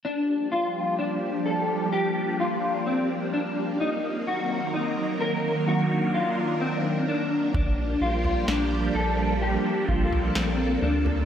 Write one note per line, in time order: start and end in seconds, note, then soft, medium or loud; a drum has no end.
0.04 3.76 F3 medium
0.04 3.76 G3 medium
0.04 7.51 A#3 medium
0.04 3.76 D4 medium
0.04 0.52 D4 medium
0.04 3.76 G4 medium
0.52 0.98 F4 medium
0.99 1.45 D4 medium
1.46 1.92 A4 medium
1.93 2.39 G4 medium
2.40 2.86 F4 medium
2.87 3.33 C4 medium
3.34 3.80 D4 medium
3.80 7.51 D#3 medium
3.80 7.51 F#3 medium
3.80 5.66 C4 medium
3.80 4.27 D#4 medium
3.80 7.51 A#4 medium
4.27 4.74 F#4 medium
4.74 5.20 D#4 medium
5.21 5.67 A#4 medium
5.67 7.53 D4 medium
5.67 6.14 F#4 medium
6.14 6.61 F4 medium
6.61 7.08 C4 medium
7.08 7.54 D4 medium
7.54 7.96 A#1 loud
7.54 11.25 F3 medium
7.54 11.25 G3 medium
7.54 11.25 A#3 medium
7.54 11.25 D4 medium
7.54 8.02 D4 medium
7.54 9.40 G4 medium
7.54 kick medium
7.54 floor tom medium
8.01 8.43 A#1 medium
8.01 8.48 F4 medium
8.24 floor tom soft
8.48 8.89 A#1 loud
8.48 8.95 D4 medium
8.48 snare medium
8.95 9.57 A#1 loud
8.95 9.41 A4 medium
9.41 9.88 G4 medium
9.41 11.25 A4 medium
9.88 10.30 A#1 loud
9.88 10.36 F4 medium
9.88 kick medium
10.13 floor tom medium
10.35 10.77 A#1 medium
10.35 10.82 C4 medium
10.35 snare loud
10.82 11.24 D2 medium
10.82 11.25 D4 medium
11.06 floor tom medium